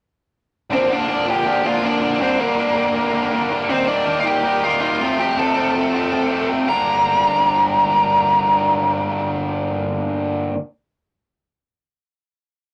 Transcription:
0.70 distorted electric guitar A#2 D3 F3 A#3 D4, lead electric guitar C4
0.75 lead electric guitar C5
0.89 distorted electric guitar A#2 D3 F3 A#3 D4, lead electric guitar D4
0.94 lead electric guitar D5
1.08 distorted electric guitar A#2 D3 F3 A#3 D4
1.26 distorted electric guitar A#2 D3 F3 A#3 D4, lead electric guitar G4 G5
1.45 distorted electric guitar A#2 D3 F3 A#3 D4
1.64 distorted electric guitar A#2 D3 F3 A#3 D4, lead electric guitar F4 F5
1.82 distorted electric guitar A#2 D3 F3 A#3 D4, lead electric guitar D4
1.86 lead electric guitar D5
2.00 distorted electric guitar A#2 D3 F3 A#3 D4
2.20 distorted electric guitar G2 D3 G3 A#3 D4, lead electric guitar C4 C5
2.38 distorted electric guitar G2 D3 G3 A#3 D4, lead electric guitar A#3 A#4
2.57 distorted electric guitar G2 D3 G3 A#3 D4
2.75 distorted electric guitar G2 D3 G3 A#3 D4
2.94 distorted electric guitar G2 D3 G3 A#3 D4
3.12 distorted electric guitar G2 D3 G3 A#3 D4
3.32 distorted electric guitar G2 D3 G3 A#3 D4
3.50 distorted electric guitar G2 D3 G3 A#3 D4
3.67 distorted electric guitar D#3 G3 A#3 D#4, lead electric guitar C4 C5
3.87 distorted electric guitar D#3 G3 A#3 D#4, lead electric guitar D4 D5
4.05 distorted electric guitar D#3 G3 A#3 D#4
4.20 lead electric guitar F5
4.24 distorted electric guitar D#3 G3 A#3 D#4, lead electric guitar G4 G5
4.43 distorted electric guitar D#3 G3 A#3 D#4
4.62 distorted electric guitar D#3 G3 A#3 D#4, lead electric guitar F4 F5
4.81 distorted electric guitar D#3 G3 A#3 D#4, lead electric guitar F4 F5
5.00 distorted electric guitar F2 C3 F3 A3 C4
5.19 distorted electric guitar F2 C3 F3 A3 C4, lead electric guitar G4 G5
5.37 distorted electric guitar F2 C3 F3 A3 C4, lead electric guitar A4 A5
5.55 distorted electric guitar F2 C3 F3 A3 C4
5.74 distorted electric guitar F2 C3 F3 A3 C4
5.92 distorted electric guitar F2 C3 F3 A3 C4
6.11 distorted electric guitar F2 C3 F3 A3 C4
6.30 distorted electric guitar F2 C3 F3 A3 C4
6.49 distorted electric guitar F2 C3 F3 A3 C4
6.68 distorted electric guitar G2 D3 G3 A#3 D4, lead electric guitar A#5

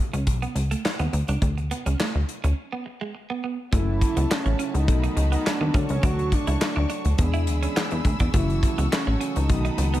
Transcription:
0.13 analog synth bass C#2, clean electric guitar C#4, closed hi-hat
0.27 analog synth bass B1, kick, closed hi-hat
0.42 clean electric guitar B3, closed hi-hat
0.55 analog synth bass C#2, muted clean electric guitar stroke, closed hi-hat
0.71 clean electric guitar A3, closed hi-hat
0.85 snare, clap
0.99 analog synth bass D#2, clean electric guitar B3, closed hi-hat
1.13 analog synth bass D2, muted clean electric guitar stroke, closed hi-hat
1.28 analog synth bass C#2, clean electric guitar D4, closed hi-hat
1.42 analog synth bass D2, kick, closed hi-hat
1.58 muted clean electric guitar stroke, closed hi-hat
1.71 clean electric guitar B3, closed hi-hat
1.86 analog synth bass C#2, clean electric guitar C#4, closed hi-hat
2.00 clean electric guitar A3, snare, clap
2.15 analog synth bass D2, muted clean electric guitar stroke
2.29 closed hi-hat
2.44 analog synth bass D2, clean electric guitar C#4, closed hi-hat
2.72 clean electric guitar B3
2.86 muted clean electric guitar stroke
3.01 clean electric guitar G#3
3.15 muted clean electric guitar stroke
3.30 clean electric guitar B3
3.44 clean electric guitar B3
3.72 analog synth bass F#1, tine electric piano F#3 A3 C#4 E4 A4, clean electric guitar A3, analog synth lead E4, string section F#4 C#5 E5 A5, kick, closed hi-hat
4.01 muted clean electric guitar stroke, kick, closed hi-hat
4.17 analog synth bass C#2, clean electric guitar B3, closed hi-hat
4.30 analog synth lead C#4, muted clean electric guitar stroke, snare, clap
4.46 analog synth bass A1, clean electric guitar C#4, closed hi-hat
4.59 clean electric guitar C#4, closed hi-hat
4.74 analog synth bass C#2, analog synth lead D#4, closed hi-hat
4.87 analog synth bass B1, tine electric piano F#3 A3 B3 D#4 A4, string section D#5 A5 B5, kick, closed hi-hat
5.03 clean electric guitar D#4, closed hi-hat
5.17 analog synth bass C#2, muted clean electric guitar stroke, closed hi-hat
5.32 clean electric guitar B3, analog synth lead D#4, closed hi-hat
5.46 analog synth lead D4, muted clean electric guitar stroke, snare, clap
5.61 analog synth bass D#2, clean electric guitar B3
5.74 analog synth bass D2, tine electric piano F#3 A3 D4 A4 C#5, clean electric guitar C#4, string section D4 C#6, kick, closed hi-hat
5.89 analog synth bass C#2, analog synth lead C#4, closed hi-hat
6.03 analog synth bass D2, clean electric guitar D4, analog synth lead F#4, kick, closed hi-hat
6.19 closed hi-hat
6.32 analog synth lead D4, muted clean electric guitar stroke, kick, closed hi-hat
6.47 analog synth bass C#2, clean electric guitar E4, closed hi-hat
6.61 muted clean electric guitar stroke, snare, clap
6.76 analog synth bass D2, clean electric guitar D4
6.90 clean electric guitar D4, closed hi-hat
7.05 analog synth bass D2, closed hi-hat
7.17 analog synth bass E2, tine electric piano E3 G#3 B3 D4 G#4, string section G#4 B5 E6, kick, closed hi-hat
7.34 clean electric guitar E4, closed hi-hat
7.47 analog synth bass D2, muted clean electric guitar stroke, closed hi-hat
7.63 clean electric guitar C#4, closed hi-hat
7.76 clean electric guitar B3, snare, clap
7.91 analog synth bass E2, muted clean electric guitar stroke, closed hi-hat
8.05 analog synth bass D2, kick, closed hi-hat
8.20 analog synth bass E2, clean electric guitar D4, kick, closed hi-hat
8.33 analog synth bass F#1, tine electric piano E3 F#3 A3 C#4 F#4, clean electric guitar A3, analog synth lead E4, string section A4 F#5 C#6, kick, closed hi-hat
8.50 closed hi-hat
8.63 muted clean electric guitar stroke, kick, closed hi-hat
8.78 analog synth bass C#2, clean electric guitar B3, closed hi-hat
8.92 analog synth lead C#4, muted clean electric guitar stroke, snare, clap
9.07 analog synth bass A1, clean electric guitar C#4
9.21 clean electric guitar C#4, closed hi-hat
9.36 analog synth bass C#2, analog synth lead D#4, closed hi-hat
9.49 analog synth bass B1, tine electric piano D#3 F#3 A3 B3 F#4, string section F#5 B5 D#6, kick, closed hi-hat
9.65 clean electric guitar D#4, closed hi-hat
9.78 analog synth bass C#2, muted clean electric guitar stroke, closed hi-hat
9.94 clean electric guitar B3, analog synth lead D#4, closed hi-hat

